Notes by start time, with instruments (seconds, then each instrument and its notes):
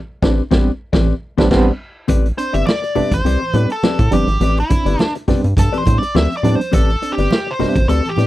0.22 analog synth bass A1, reed electric piano C4 D4, clean electric guitar C4 G4 B4 D5, kick, snare
0.51 analog synth bass A1, reed electric piano G3 B3 C4 D4, clean electric guitar C4 G4 B4 D5, kick, snare
0.93 analog synth bass A1, reed electric piano A2 E3, clean electric guitar C4 G4 B4 D5, kick, snare
1.38 analog synth bass A1, reed electric piano G3 B3 C4 D4, clean electric guitar C4 G4 B4 D5, kick, snare
1.50 analog synth bass A1, reed electric piano G3 B3 C4 D4, clean electric guitar C4 G4 B4 D5, kick, snare, crash
2.08 analog synth bass A1, reed electric piano A2 E3, clean electric guitar C4 G4 B4 D5, kick, closed hi-hat, muted conga
2.26 closed hi-hat
2.37 reed electric piano C4 D4, lead electric guitar C5, muted clean electric guitar stroke, closed hi-hat
2.53 analog synth bass G1, clean electric guitar C4 G4 B4 D5, lead electric guitar E5, closed hi-hat
2.67 lead electric guitar D5, snare, high conga
2.82 muted clean electric guitar stroke, closed hi-hat
2.95 analog synth bass A1, reed electric piano G3 B3 C4 D4, clean electric guitar C4 G4 B4 E5, open hi-hat, low conga
3.12 analog synth bass A1, lead electric guitar C5, muted clean electric guitar stroke, kick, closed hi-hat
3.24 analog synth bass C2, clean electric guitar C4 G4 B4 D5, reed electric piano C4 D4, closed hi-hat, muted conga
3.41 reed electric piano A2 E3, muted clean electric guitar stroke
3.54 analog synth bass A2, reed electric piano G3 B3 C4 D4, clean electric guitar C4 G4 B4 D5, lead electric guitar B4, closed hi-hat, muted conga
3.70 lead electric guitar A4, muted clean electric guitar stroke, closed hi-hat
3.83 clean electric guitar C4 G4 B4 D5, snare, high conga
3.99 analog synth bass A2, muted clean electric guitar stroke, kick, closed hi-hat
4.11 analog synth bass G1, reed electric piano G3 B3 C4 D4, clean electric guitar C4 G4 B4 D5, lead electric guitar G4, closed hi-hat, high conga
4.27 analog synth bass G#1, closed hi-hat
4.40 analog synth bass A1, reed electric piano A2 E3, clean electric guitar C4 G4 B4 D5, closed hi-hat, muted conga
4.57 lead electric guitar E4, closed hi-hat
4.70 reed electric piano C4 D4, muted clean electric guitar stroke, kick, closed hi-hat, muted conga
4.85 analog synth bass G1, clean electric guitar C4 G4 B4 D5, closed hi-hat
4.99 lead electric guitar D4, snare, high conga
5.15 muted clean electric guitar stroke, closed hi-hat
5.28 analog synth bass G2, reed electric piano G3 B3 C4 D4, clean electric guitar C4 G4 B4 D5, kick, snare, open hi-hat, low conga
5.43 analog synth bass G2, muted clean electric guitar stroke, closed hi-hat
5.56 analog synth bass G2, reed electric piano C4 D4, lead electric guitar A4, muted clean electric guitar stroke, kick, closed hi-hat, muted conga, low conga
5.72 reed electric piano A2 E3, clean electric guitar C4 G4 B4 D5, closed hi-hat
5.78 lead electric guitar C5
5.86 analog synth bass A2, reed electric piano G3 B3 C4 D4, kick, closed hi-hat, muted conga
5.98 lead electric guitar D5
6.02 muted clean electric guitar stroke, closed hi-hat
6.15 analog synth bass D2, clean electric guitar C4 G4 B4 D5, lead electric guitar E5, snare, high conga
6.31 muted clean electric guitar stroke, closed hi-hat
6.37 lead electric guitar D5
6.43 analog synth bass A2, reed electric piano G3 B3 C4 D4, clean electric guitar C4 G4 B4 D5, closed hi-hat, high conga
6.55 lead electric guitar C5
6.61 closed hi-hat
6.72 analog synth bass A1, reed electric piano A2 E3, clean electric guitar C4 G4 B4 D5, lead electric guitar A4, kick, closed hi-hat, muted conga
6.89 closed hi-hat
7.02 reed electric piano C4 D4, muted clean electric guitar stroke, closed hi-hat
7.13 lead electric guitar G4
7.18 analog synth bass G1, clean electric guitar C4 G4 B4 D5, closed hi-hat
7.31 snare, high conga
7.47 muted clean electric guitar stroke
7.51 lead electric guitar C5
7.59 analog synth bass A1, reed electric piano G3 B3 C4 D4, clean electric guitar C4 G4 B4 E5, snare, open hi-hat, low conga
7.76 analog synth bass A1, muted clean electric guitar stroke, kick, closed hi-hat
7.88 analog synth bass D2, clean electric guitar C4 G4 B4 D5, reed electric piano C4 D4, lead electric guitar A4, closed hi-hat, muted conga
8.05 reed electric piano A2 E3, lead electric guitar G4, muted clean electric guitar stroke, closed hi-hat
8.16 analog synth bass A2, reed electric piano G3 B3 C4 D4, clean electric guitar C4 G4 B4 D5, closed hi-hat, muted conga